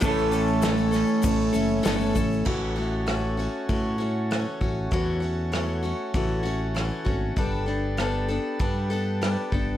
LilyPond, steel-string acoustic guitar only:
\new Staff \with { instrumentName = "Steel-string acoustic guitar" } { \time 4/4 \key a \major \tempo 4 = 98 <a, e a cis' a'>8 <a cis' a'>8 <a, e a cis' a'>8 <a cis' a'>8 <e a cis' a'>8 <a cis' a'>8 <a, e a cis' a'>8 <a cis' a'>8 | <a, e a cis' fis'>8 <a cis' fis'>8 <e a cis' fis'>8 <a cis' fis'>8 <a, e a cis' fis'>8 <a cis' fis'>8 <e a cis' fis'>8 <a cis' fis'>8 | <a, e a cis' fis'>8 <a cis' fis'>8 <e a cis' fis'>8 <a cis' fis'>8 <a, e a cis' fis'>8 <a cis' fis'>8 <e a cis' fis'>8 <a cis' fis'>8 | <g b d' a'>8 <b d' a'>8 <g b d' a'>8 <b d' a'>8 <g b d' a'>8 <b d' a'>8 <g b d' a'>8 <b d' a'>8 | }